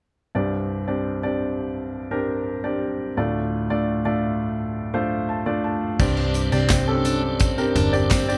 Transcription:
0.35 3.13 C2 medium
0.35 3.13 G2 soft
0.35 0.80 C4 medium
0.35 0.80 D4 medium
0.35 0.80 G4 medium
0.35 0.80 D5 medium
0.88 1.18 C4 medium
0.88 1.18 D4 medium
0.88 1.18 G4 medium
0.88 1.18 D5 medium
1.23 1.99 C4 medium
1.23 1.99 D4 medium
1.23 1.99 G4 medium
1.23 1.99 D5 medium
2.11 2.57 C4 medium
2.11 2.57 D4 medium
2.11 2.57 G4 medium
2.11 2.57 A#4 medium
2.64 3.10 C4 medium
2.64 3.09 D4 medium
2.64 3.10 G4 medium
2.64 3.09 D5 medium
3.17 5.96 D2 medium
3.17 5.96 A2 medium
3.17 3.63 A3 medium
3.17 3.63 D4 medium
3.17 3.63 F4 medium
3.17 3.63 D5 medium
3.70 4.00 A3 medium
3.70 4.00 D4 medium
3.70 4.01 F4 medium
3.70 4.00 D5 medium
4.05 4.81 A3 medium
4.05 4.81 D4 medium
4.05 4.81 F4 medium
4.05 4.81 D5 medium
4.94 5.39 A3 medium
4.94 5.39 D4 medium
4.94 5.39 F4 medium
4.94 5.39 C5 medium
4.94 5.27 F5 medium
5.29 5.62 A5 medium
5.46 5.92 A3 medium
5.46 5.92 D4 medium
5.46 5.92 F4 medium
5.46 5.92 D5 medium
5.64 5.97 A5 medium
5.99 6.49 C2 medium
5.99 7.02 G2 medium
5.99 6.45 C4 medium
5.99 8.38 C4 medium
5.99 6.45 D4 medium
5.99 8.38 D4 medium
5.99 6.45 G4 medium
5.99 8.38 G4 medium
5.99 6.45 D5 medium
5.99 kick loud
5.99 crash medium
5.99 tambourine medium
6.17 6.34 D4 medium
6.34 closed hi-hat medium
6.34 tambourine soft
6.52 7.72 C2 medium
6.52 6.83 C4 medium
6.52 6.86 C4 medium
6.52 6.83 D4 medium
6.52 6.83 G4 medium
6.52 6.83 D5 medium
6.52 tambourine soft
6.69 kick loud
6.69 snare loud
6.69 clap medium
6.69 closed hi-hat medium
6.69 tambourine medium
6.87 7.48 C4 medium
6.87 6.94 C#4 medium
6.87 7.48 G4 medium
6.87 7.48 A4 medium
6.94 7.51 D4 medium
7.05 7.22 D4 medium
7.05 closed hi-hat medium
7.05 tambourine medium
7.40 7.74 C4 medium
7.40 kick loud
7.40 closed hi-hat medium
7.40 tambourine medium
7.58 7.88 C4 medium
7.58 7.88 D4 medium
7.58 7.88 G4 medium
7.58 7.88 A#4 medium
7.58 tambourine soft
7.75 8.38 G1 medium
7.75 7.93 D4 medium
7.75 closed hi-hat medium
7.75 floor tom medium
7.93 8.24 C4 medium
7.93 8.24 D4 medium
7.93 8.24 G4 medium
7.93 8.24 D5 medium
7.93 tambourine soft
8.11 8.38 C4 medium
8.11 kick loud
8.11 snare loud
8.11 clap medium
8.11 closed hi-hat medium
8.11 tambourine medium
8.28 8.38 C4 medium
8.28 8.38 D4 medium
8.28 8.38 G4 medium
8.28 8.38 D5 medium
8.28 tambourine medium

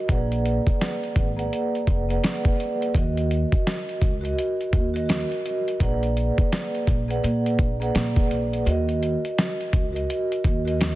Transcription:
0.08 0.57 A#1 loud
0.08 1.25 A#3 medium
0.08 1.26 G#4 medium
0.08 1.26 B4 medium
0.08 1.27 D5 medium
0.08 1.27 F#5 loud
0.08 kick loud
0.08 closed hi-hat loud
0.32 closed hi-hat soft
0.46 closed hi-hat medium
0.67 kick loud
0.67 closed hi-hat medium
0.81 snare medium
0.81 closed hi-hat medium
1.03 closed hi-hat soft
1.16 1.46 G#1 medium
1.16 kick medium
1.16 closed hi-hat medium
1.37 2.02 A#3 medium
1.37 2.02 G#4 medium
1.37 2.02 B4 medium
1.37 2.03 D5 medium
1.37 2.03 F#5 loud
1.37 closed hi-hat soft
1.53 closed hi-hat medium
1.75 closed hi-hat soft
1.87 2.17 F1 medium
1.87 kick loud
1.87 closed hi-hat medium
2.09 2.55 A#3 medium
2.09 2.55 G#4 medium
2.09 2.56 B4 medium
2.09 2.56 D5 medium
2.09 2.56 F#5 loud
2.09 closed hi-hat medium
2.24 snare loud
2.24 closed hi-hat medium
2.45 kick medium
2.45 closed hi-hat soft
2.57 2.91 A#3 medium
2.57 2.92 G#4 medium
2.57 2.92 B4 medium
2.57 2.92 D5 medium
2.57 2.93 F#5 medium
2.57 closed hi-hat medium
2.82 closed hi-hat soft
2.94 3.43 D#2 loud
2.94 4.11 F#4 medium
2.94 4.12 A#4 medium
2.94 4.13 D#5 medium
2.94 kick loud
2.94 closed hi-hat loud
3.17 closed hi-hat soft
3.31 closed hi-hat medium
3.52 kick medium
3.52 closed hi-hat medium
3.67 snare loud
3.67 closed hi-hat medium
3.89 closed hi-hat soft
4.02 4.31 C#2 medium
4.02 kick medium
4.02 closed hi-hat medium
4.21 4.87 F#4 loud
4.21 4.88 A#4 medium
4.21 4.88 D#5 medium
4.21 closed hi-hat soft
4.38 closed hi-hat medium
4.61 closed hi-hat soft
4.73 5.21 D#2 medium
4.73 kick loud
4.73 closed hi-hat medium
4.94 5.05 F#4 medium
4.94 5.06 A#4 medium
4.94 5.07 D#5 loud
4.94 closed hi-hat medium
5.06 5.41 F#4 medium
5.06 5.42 A#4 medium
5.06 5.42 D#5 medium
5.06 closed hi-hat medium
5.10 snare loud
5.32 closed hi-hat soft
5.45 5.78 F#4 medium
5.45 5.79 A#4 medium
5.45 5.80 D#5 medium
5.45 closed hi-hat medium
5.68 closed hi-hat soft
5.80 6.29 A#1 loud
5.80 6.97 A#3 medium
5.80 6.97 G#4 medium
5.80 6.98 B4 medium
5.80 6.98 D5 medium
5.80 6.98 F#5 loud
5.80 kick loud
5.80 closed hi-hat loud
6.03 closed hi-hat soft
6.17 closed hi-hat medium
6.38 kick medium
6.38 closed hi-hat medium
6.52 snare medium
6.52 closed hi-hat medium
6.75 closed hi-hat soft
6.87 7.17 A#1 medium
6.87 kick medium
6.87 closed hi-hat medium
7.08 7.73 A#3 medium
7.08 7.74 G#4 medium
7.08 7.74 B4 medium
7.08 7.74 D5 medium
7.08 7.75 F#5 loud
7.08 closed hi-hat medium
7.24 7.60 A#2 loud
7.24 closed hi-hat medium
7.46 closed hi-hat soft
7.59 7.89 A#1 medium
7.59 kick loud
7.59 closed hi-hat medium
7.80 8.27 A#3 medium
7.80 8.27 G#4 medium
7.80 8.27 B4 medium
7.80 8.28 D5 medium
7.80 8.28 F#5 loud
7.80 closed hi-hat medium
7.95 8.24 A#2 loud
7.95 snare loud
7.95 closed hi-hat medium
8.16 kick medium
8.16 closed hi-hat soft
8.28 8.60 A#1 medium
8.28 8.63 A#3 medium
8.28 8.63 G#4 medium
8.28 8.63 B4 medium
8.28 8.64 D5 medium
8.28 8.64 F#5 medium
8.28 closed hi-hat medium
8.53 closed hi-hat soft
8.65 9.14 D#2 loud
8.65 9.83 F#4 medium
8.65 9.83 A#4 medium
8.65 9.84 D#5 loud
8.65 closed hi-hat loud
8.89 closed hi-hat soft
9.03 closed hi-hat medium
9.25 closed hi-hat medium
9.38 snare loud
9.38 closed hi-hat medium
9.61 closed hi-hat soft
9.73 10.03 C#2 medium
9.73 kick loud
9.73 closed hi-hat medium
9.93 10.58 F#4 loud
9.93 10.59 A#4 medium
9.93 10.60 D#5 medium
9.93 closed hi-hat soft
10.10 closed hi-hat medium
10.32 closed hi-hat soft
10.44 10.93 D#2 medium
10.44 kick medium
10.44 closed hi-hat medium
10.65 10.76 F#4 medium
10.65 10.77 A#4 medium
10.65 10.79 D#5 loud
10.65 closed hi-hat medium
10.77 10.95 F#4 medium
10.77 10.95 A#4 medium
10.77 10.95 D#5 medium
10.77 closed hi-hat medium
10.81 snare loud

